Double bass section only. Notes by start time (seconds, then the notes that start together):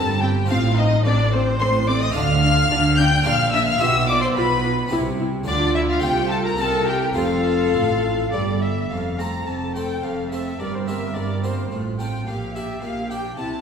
Already playing: G1
0.50 A1
1.05 A1
1.60 A1
2.15 D2
2.70 D2
3.26 A#1
3.80 B1
4.36 B1
4.92 C2
5.47 D2
6.04 C2
6.60 C2
7.18 F1
7.76 A1
8.34 G1
8.92 F1
9.48 F1
10.04 F1
10.60 G1
11.15 G1
11.71 A1
12.26 A#1
12.82 A#1
13.38 C2